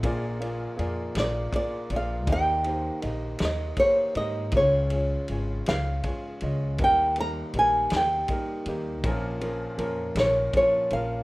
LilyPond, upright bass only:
\new Staff \with { instrumentName = "Upright bass" } { \clef bass \time 6/8 \key ees \mixolydian \tempo 4. = 53 bes,,4 f,8 bes,,8 r8 bes,,8 | ees,4 bes,,8 ees,8 r8 aes,8 | des,4 aes,,8 des,8 r8 des,8 | ees,4 bes,,8 ees,8 r8 ees,8 |
bes,,4 f,8 bes,,8 r8 bes,,8 | }